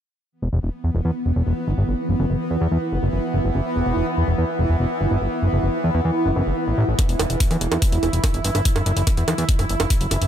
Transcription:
0.32 synth texture E3 B3
0.42 analog synth bass E1
0.53 analog synth bass E1
0.63 analog synth bass E1
0.84 analog synth bass E2
0.94 analog synth bass E1
1.05 analog synth bass E2
1.26 analog synth bass E1
1.36 analog synth bass E1
1.47 analog synth bass E1
1.67 analog synth bass G1
1.78 analog synth bass G1
1.88 analog synth bass G1
2.09 analog synth bass F#1
2.19 analog synth bass F#1
2.30 analog synth bass F#1
2.51 analog synth bass E2
2.61 analog synth bass E2
2.72 analog synth bass E2
2.92 analog synth bass F#1
3.03 analog synth bass F#1
3.13 analog synth bass F#1
3.34 analog synth bass F#1
3.44 analog synth bass F#1
3.55 analog synth bass F#1
3.76 analog synth bass E1
3.86 analog synth bass E1
3.97 analog synth bass E1
4.17 analog synth bass E2
4.28 analog synth bass E1
4.38 analog synth bass E2
4.59 analog synth bass E1
4.70 analog synth bass E1
4.80 analog synth bass E1
5.01 analog synth bass G1
5.11 analog synth bass G1
5.22 analog synth bass G1
5.42 analog synth bass F#1
5.53 analog synth bass F#1
5.63 analog synth bass F#1
5.84 analog synth bass E2
5.94 analog synth bass E2
6.05 analog synth bass E2
6.26 analog synth bass F#1
6.36 analog synth bass F#1
6.47 analog synth bass F#1
6.67 analog synth bass A1
6.78 analog synth bass A1
6.88 analog synth bass A1
6.99 synth texture E4, kick, closed hi-hat, high bongo
7.09 analog synth bass E1, closed hi-hat
7.19 analog synth bass E1, closed hi-hat, high bongo
7.30 analog synth bass E1, closed hi-hat
7.40 kick, closed hi-hat
7.51 analog synth bass E2, closed hi-hat, high bongo
7.61 analog synth bass E1, closed hi-hat
7.72 analog synth bass E2, closed hi-hat, high bongo
7.82 kick, closed hi-hat
7.92 analog synth bass E1, closed hi-hat
8.03 analog synth bass E1, closed hi-hat, high bongo
8.13 analog synth bass E1, closed hi-hat
8.24 kick, closed hi-hat, high bongo
8.34 analog synth bass G1, closed hi-hat
8.44 analog synth bass G1, closed hi-hat
8.55 analog synth bass G1, closed hi-hat, high bongo
8.65 kick, closed hi-hat
8.76 analog synth bass F#1, closed hi-hat, high bongo
8.86 analog synth bass F#1, closed hi-hat
8.97 analog synth bass F#1, closed hi-hat
9.07 kick, closed hi-hat, high bongo
9.17 analog synth bass E2, closed hi-hat
9.28 analog synth bass E2, closed hi-hat, high bongo
9.38 analog synth bass E2, closed hi-hat
9.49 kick, closed hi-hat
9.59 analog synth bass F#1, closed hi-hat, high bongo
9.69 analog synth bass F#1, closed hi-hat
9.80 analog synth bass F#1, closed hi-hat, high bongo
9.90 kick, closed hi-hat
10.01 analog synth bass F#1, closed hi-hat
10.11 analog synth bass F#1, closed hi-hat, high bongo
10.22 analog synth bass F#1, closed hi-hat

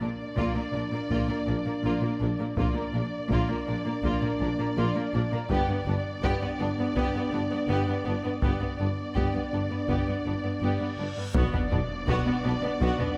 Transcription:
Already playing: french horn section A#3 D4, violin section D5
0.02 double bass section A#1, tuba A#1, viola section A#3, violin section D4
0.36 double bass section A#1, tuba A#1, cello section A#2, viola section A#3, violin section F4, taiko
0.55 cello section A#2, violin section A#3, viola section A#3
0.73 double bass section A#1, tuba A#1, cello section A#2, viola section A#3, violin section D4
0.92 cello section A#2, viola section A#3, violin section A#3
1.10 double bass section A#1, tuba A#1, cello section A#2, viola section A#3, violin section F4, taiko
1.29 cello section A#2, violin section A#3, viola section A#3
1.47 double bass section A#1, tuba A#1, cello section A#2, viola section A#3, violin section D4
1.65 cello section A#2, viola section A#3, violin section A#3
1.83 double bass section A#1, tuba A#1, cello section A#2, viola section A#3, violin section F4
2.01 cello section A#2, violin section A#3, viola section A#3
2.20 double bass section A#1, tuba A#1, cello section A#2, viola section A#3, violin section D4
2.39 cello section A#2, violin section A#3, viola section A#3
2.57 tuba A#1, double bass section A#1, cello section A#2, french horn section A#3 D4, viola section A#3, violin section F4 D5, taiko
2.75 cello section A#2, viola section A#3, violin section A#3
2.93 tuba A#1, double bass section A#1, cello section A#2, viola section A#3, violin section D4
3.29 tuba A#1, double bass section A#1, cello section A#2, viola section A#3, violin section F4, taiko
3.48 cello section A#2, viola section A#3, violin section A#3
3.67 tuba A#1, double bass section A#1, cello section A#2, viola section A#3, violin section D4
3.84 cello section A#2, viola section A#3, violin section A#3
4.03 tuba A#1, double bass section A#1, cello section A#2, viola section A#3, violin section F4, taiko
4.21 cello section A#2, viola section A#3, violin section A#3
4.39 tuba A#1, double bass section A#1, cello section A#2, viola section A#3, violin section D4
4.58 cello section A#2, violin section A#3, viola section A#3
4.77 tuba A#1, double bass section A#1, cello section A#2, viola section A#3, violin section F4
4.95 cello section A#2, viola section A#3, violin section A#3
5.13 tuba A#1, double bass section A#1, cello section A#2, viola section A#3, violin section D4
5.32 cello section A#2, violin section A#3, viola section A#3
5.49 double bass section G1, tuba G1, cello section G2, viola section B3, french horn section B3 D4, violin section G4 D5, taiko
5.68 cello section G2, viola section B3, violin section B3
5.86 tuba G1, double bass section G1, cello section G2, viola section B3, violin section D4
6.23 double bass section G1, tuba G1, cello section G2, viola section B3, violin section G4, taiko
6.41 cello section G2, violin section B3, viola section B3
6.59 tuba G1, double bass section G1, cello section G2, viola section B3, violin section D4
6.78 cello section G2, viola section B3, violin section B3
6.96 tuba G1, double bass section G1, cello section G2, viola section B3, violin section G4, taiko
7.15 cello section G2, viola section B3, violin section B3
7.31 double bass section G1, tuba G1, cello section G2, viola section B3, violin section D4
7.50 cello section G2, viola section B3, violin section B3
7.68 double bass section G1, tuba G1, cello section G2, viola section B3, violin section G4
7.87 cello section G2, viola section B3, violin section B3
8.05 double bass section G1, tuba G1, cello section G2, viola section B3, violin section D4
8.24 cello section G2, viola section B3, violin section B3
8.42 double bass section G1, tuba G1, cello section G2, viola section B3, french horn section B3 D4, violin section G4 D5, taiko, reverse cymbal
8.60 cello section G2, viola section B3, violin section B3
8.79 double bass section G1, tuba G1, cello section G2, viola section B3, violin section D4
9.15 double bass section G1, tuba G1, cello section G2, viola section B3, violin section G4, taiko
9.34 cello section G2, violin section B3, viola section B3
9.52 tuba G1, double bass section G1, cello section G2, viola section B3, violin section D4
9.70 cello section G2, viola section B3, violin section B3
9.88 tuba G1, double bass section G1, cello section G2, viola section B3, violin section G4, taiko
10.07 cello section G2, violin section B3, viola section B3
10.25 double bass section G1, tuba G1, cello section G2, viola section B3, violin section D4
10.43 cello section G2, violin section B3, viola section B3
10.61 tuba G1, double bass section G1, cello section G2, viola section B3, violin section G4
10.80 cello section G2, violin section B3, viola section B3
10.99 double bass section G1, tuba G1, cello section G2, viola section B3, violin section D4
11.17 cello section G2, violin section B3, viola section B3
11.33 double bass section B1, tuba B1, cello section B2, french horn section B3 D4, viola section B3, violin section F#4 D5, taiko, impact
11.53 cello section B2, violin section B3, viola section B3, taiko low
11.71 tuba B1, double bass section B1, cello section B2, viola section B3, violin section D4, taiko low
12.07 tuba B1, double bass section B1, cello section B2, viola section B3, violin section F#4, taiko
12.26 cello section B2, violin section B3, viola section B3
12.44 double bass section B1, tuba B1, cello section B2, viola section B3, violin section D4
12.62 cello section B2, violin section B3, viola section B3
12.80 double bass section B1, tuba B1, cello section B2, viola section B3, violin section F#4, taiko
12.99 cello section B2, violin section B3, viola section B3, taiko low

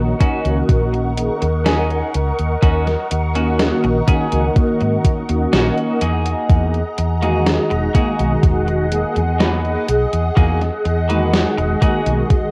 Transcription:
Already playing: fretless electric bass A#1, analog polysynth D#3 A#3 C#4 F#4, string machine A#4 D#5 F#5 C#6
0.20 analog polysynth D#3 A#3 C#4 F#4, clean electric guitar C#4 D#4 F#4, kick, closed hi-hat
0.44 fretless electric bass C#2, analog polysynth D#3 A#3 C#4 F#4, closed hi-hat
0.69 fretless electric bass A#1, kick, closed hi-hat
0.93 muted clean electric guitar stroke, closed hi-hat
1.17 analog polysynth D#3 A#3 C#4 G#4, closed hi-hat
1.42 fretless electric bass D#2, muted clean electric guitar stroke, closed hi-hat
1.66 clean electric guitar C#4 D#4 G#4, snare, closed hi-hat
1.90 closed hi-hat
2.14 fretless electric bass C#2, closed hi-hat
2.39 fretless electric bass D#2, closed hi-hat
2.62 fretless electric bass D#2, clean electric guitar C#4 D#4 F#4, kick, closed hi-hat
2.87 snare, closed hi-hat
3.11 fretless electric bass D#2, muted clean electric guitar stroke, closed hi-hat
3.35 analog polysynth D#3 A#3 C#4 F#4, clean electric guitar C#4 D#4 F#4, closed hi-hat
3.59 snare, closed hi-hat
3.84 fretless electric bass A#1, muted clean electric guitar stroke, closed hi-hat
4.07 analog polysynth D#3 A#3 C#4 F#4, clean electric guitar C#4 D#4 G#4, kick, closed hi-hat
4.31 fretless electric bass C#2, analog polysynth D#3 A#3 C#4 F#4, closed hi-hat
4.56 kick, closed hi-hat
4.80 fretless electric bass G#2, muted clean electric guitar stroke, closed hi-hat
5.04 kick, closed hi-hat
5.28 fretless electric bass D#2, analog polysynth D#3 A#3 C#4 F#4, muted clean electric guitar stroke, closed hi-hat
5.53 fretless electric bass A#1, clean electric guitar C#4 D#4 F#4, snare, closed hi-hat
5.78 closed hi-hat
6.01 fretless electric bass E2, clean electric guitar A#3 D#4 F#4 G#4, string machine G#4 F#5 A#5, closed hi-hat
6.26 closed hi-hat
6.50 fretless electric bass E2, kick, closed hi-hat
6.74 closed hi-hat
6.98 fretless electric bass E2, muted clean electric guitar stroke, closed hi-hat
7.21 analog polysynth D#3 G#3 F#4, clean electric guitar A#3 D#4 F#4 G#4, closed hi-hat
7.47 snare, closed hi-hat
7.70 fretless electric bass E1, muted clean electric guitar stroke, closed hi-hat
7.94 analog polysynth D#3 G#3 A#3 F#4, clean electric guitar A#3 D#4 F#4 G#4, kick, closed hi-hat
8.19 fretless electric bass B1, analog polysynth D#3 G#3 F#4, closed hi-hat
8.43 fretless electric bass E1, kick, closed hi-hat
8.67 muted clean electric guitar stroke, closed hi-hat
8.91 analog polysynth D#3 G#3 A#3 G#4, closed hi-hat
9.16 fretless electric bass E2, muted clean electric guitar stroke, closed hi-hat
9.39 clean electric guitar A#3 D#4 F#4 B4, snare, closed hi-hat
9.65 closed hi-hat
9.88 fretless electric bass B1, closed hi-hat
10.13 fretless electric bass E2, closed hi-hat
10.36 fretless electric bass E2, clean electric guitar A#3 D#4 F#4 G#4, kick, closed hi-hat
10.61 snare, closed hi-hat
10.85 fretless electric bass E2, muted clean electric guitar stroke, closed hi-hat
11.09 analog polysynth D#3 G#3 F#4, clean electric guitar A#3 D#4 F#4 B4, closed hi-hat
11.33 snare, closed hi-hat
11.57 fretless electric bass E1, muted clean electric guitar stroke, closed hi-hat
11.81 analog polysynth D#3 G#3 A#3 F#4, clean electric guitar A#3 D#4 F#4 G#4, kick, closed hi-hat
12.06 fretless electric bass B1, analog polysynth D#3 G#3 F#4, closed hi-hat
12.30 kick, closed hi-hat

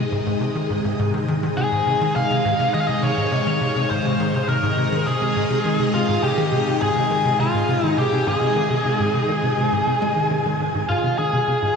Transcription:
Already playing: string machine G#2 C3 D#3 G#3 D#5
0.12 analog synth bass G#2
0.26 analog synth bass G#2
0.41 analog synth bass C3
0.55 analog synth bass D#3
0.70 analog synth bass G#2
0.85 analog synth bass G#2
0.99 analog synth bass G#2
1.14 analog synth bass D#3
1.28 analog synth bass D#3
1.43 analog synth bass D#3
1.57 analog synth bass C3, lead electric guitar G#4, string machine D#5
1.72 analog synth bass G#2
1.87 analog synth bass C3
2.01 analog synth bass D#3
2.16 analog synth bass C3, lead electric guitar F5
2.31 analog synth bass C3
2.45 analog synth bass G#2
2.60 analog synth bass C3
2.74 analog synth bass D#3, lead electric guitar D#5
2.81 lead electric guitar F5
2.88 analog synth bass C3, lead electric guitar D#5
3.03 analog synth bass C3, lead electric guitar C#5
3.18 analog synth bass G#2
3.32 analog synth bass C3, lead electric guitar C#5
3.47 analog synth bass D#3
3.61 analog synth bass C3
3.76 analog synth bass C3
3.90 analog synth bass G#2, lead electric guitar C5
4.05 analog synth bass C3
4.20 analog synth bass D#3
4.34 analog synth bass C3
4.49 analog synth bass C3, lead electric guitar A#4
4.63 analog synth bass G#2
4.78 analog synth bass C3
4.92 analog synth bass D#3
5.07 analog synth bass C3, lead electric guitar G#4
5.22 analog synth bass C3
5.36 analog synth bass G#2
5.50 analog synth bass C3
5.65 analog synth bass D#3
5.80 analog synth bass C3
5.94 analog synth bass C3, lead electric guitar F4
6.09 analog synth bass G#2
6.23 analog synth bass C3, lead electric guitar G4
6.38 analog synth bass D#3
6.52 analog synth bass C3
6.67 analog synth bass C3
6.82 analog synth bass G#2, lead electric guitar G#4
6.96 analog synth bass C3
7.11 analog synth bass D#3
7.25 analog synth bass C3
7.40 analog synth bass C3, lead electric guitar F4
7.54 analog synth bass G#2
7.69 analog synth bass C3
7.84 analog synth bass D#3, lead electric guitar D#4
7.98 analog synth bass C3, lead electric guitar G4
8.13 analog synth bass C3
8.27 analog synth bass G#2, lead electric guitar G#4
8.42 analog synth bass C3
8.56 analog synth bass D#3
8.71 analog synth bass C3
8.85 analog synth bass C3
9.00 analog synth bass G#2
9.14 analog synth bass C3
9.29 analog synth bass D#3
9.43 analog synth bass C3
9.58 analog synth bass C3
9.73 analog synth bass G#2
9.87 analog synth bass C3
10.02 analog synth bass G#3
10.16 analog synth bass D#3
10.31 analog synth bass D#3
10.46 analog synth bass D#3
10.60 analog synth bass D#3
10.75 analog synth bass G#2
10.89 string machine G#2 C3 D#3 F4 A#4, analog synth bass G#2, lead electric guitar F4
11.04 analog synth bass C3
11.18 analog synth bass D#3, lead electric guitar G#4
11.33 analog synth bass C3
11.48 analog synth bass C3
11.62 analog synth bass G#2

